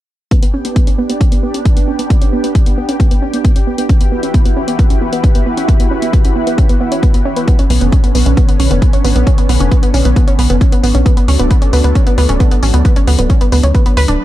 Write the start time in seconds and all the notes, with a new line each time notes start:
0.31 B3 D4 G4, kick, closed hi-hat
0.42 B3, closed hi-hat
0.54 C#4
0.65 B3, closed hi-hat
0.76 B3, kick, closed hi-hat
0.87 C#4, closed hi-hat
0.98 B3
1.10 B3, closed hi-hat
1.21 C#4, kick, closed hi-hat
1.32 B3, closed hi-hat
1.43 B3
1.54 C#4, closed hi-hat
1.65 B3, kick, closed hi-hat
1.77 B3, closed hi-hat
1.88 C#4
1.99 B3, closed hi-hat
2.10 B3, kick, closed hi-hat
2.22 C#4, closed hi-hat
2.33 B3
2.44 B3, closed hi-hat
2.55 C#4, kick, closed hi-hat
2.66 B3, closed hi-hat
2.78 B3
2.89 C#4, closed hi-hat
3.00 B3, kick, closed hi-hat
3.11 B3, closed hi-hat
3.22 C#4
3.33 B3, closed hi-hat
3.45 B3, kick, closed hi-hat
3.56 C#4, closed hi-hat
3.67 B3
3.78 B3, closed hi-hat
3.89 E3 C#4 E4 F#4 B4, kick, closed hi-hat
4.01 B3, closed hi-hat
4.12 B3
4.23 C#4, closed hi-hat
4.34 B3, kick, closed hi-hat
4.45 B3, closed hi-hat
4.57 C#4
4.68 B3, closed hi-hat
4.79 B3, kick, closed hi-hat
4.90 C#4, closed hi-hat
5.02 B3
5.13 B3, closed hi-hat
5.24 C#4, kick, closed hi-hat
5.35 B3, closed hi-hat
5.46 B3
5.57 C#4, closed hi-hat
5.68 B3, kick, closed hi-hat
5.80 B3, closed hi-hat
5.91 C#4
6.02 B3, closed hi-hat
6.13 B3, kick, closed hi-hat
6.25 C#4, closed hi-hat
6.36 B3
6.47 B3, closed hi-hat
6.58 C#4, kick, closed hi-hat
6.69 B3, closed hi-hat
6.81 B3
6.92 C#4, closed hi-hat
7.03 B3, kick, closed hi-hat
7.14 B3, closed hi-hat
7.25 C#4
7.36 B3, closed hi-hat
7.48 D3 B3 C#4, kick, closed hi-hat
7.59 C#4, closed hi-hat
7.70 B1 B3, open hi-hat
7.81 F#1 B3, closed hi-hat
7.92 C#4, kick, closed hi-hat
8.04 B3, closed hi-hat
8.15 B1 B3, open hi-hat
8.26 B1 C#4, closed hi-hat
8.37 B3, kick, closed hi-hat
8.48 B3, closed hi-hat
8.60 B1 C#4, open hi-hat
8.71 F#1 B3, closed hi-hat
8.82 B3, kick, closed hi-hat
8.93 C#4, closed hi-hat
9.04 A1 B3, open hi-hat
9.15 B1 B3, closed hi-hat
9.27 C#4, kick, closed hi-hat
9.38 B3, closed hi-hat
9.49 B1 B3, open hi-hat
9.60 F#1 C#4, closed hi-hat
9.71 B3, kick, closed hi-hat
9.83 B3, closed hi-hat
9.94 B1 C#4, open hi-hat
10.05 B1 B3, closed hi-hat
10.16 B3, kick, closed hi-hat
10.27 C#4, closed hi-hat
10.39 B1 B3, open hi-hat
10.50 F#1 B3, closed hi-hat
10.61 C#4, kick, closed hi-hat
10.72 B3, closed hi-hat
10.83 A1 B3, open hi-hat
10.95 B1 C#4, closed hi-hat
11.06 F#3 A3 B3 D4, kick, closed hi-hat
11.17 B3, closed hi-hat
11.28 D2 C#4, open hi-hat
11.39 D1 B3, closed hi-hat
11.51 B3, kick, closed hi-hat
11.62 C#4, closed hi-hat
11.73 D2 B3, open hi-hat
11.84 D2 B3, closed hi-hat
11.95 C#4, kick, closed hi-hat
12.07 B3, closed hi-hat
12.18 D2 B3, open hi-hat
12.29 D1 C#4, closed hi-hat
12.40 B3, kick, closed hi-hat
12.51 B3, closed hi-hat
12.63 A1 C#4, open hi-hat
12.74 D2 B3, closed hi-hat
12.85 B3, kick, closed hi-hat
12.96 C#4, closed hi-hat
13.07 D2 B3, open hi-hat
13.19 D1 B3, closed hi-hat
13.30 C#4, kick, closed hi-hat
13.41 B3, closed hi-hat
13.52 D2 B3, open hi-hat
13.63 D2 C#4, closed hi-hat
13.75 B3, kick, closed hi-hat
13.86 B3, closed hi-hat
13.97 D2 B4, open hi-hat
14.08 D1 D4, closed hi-hat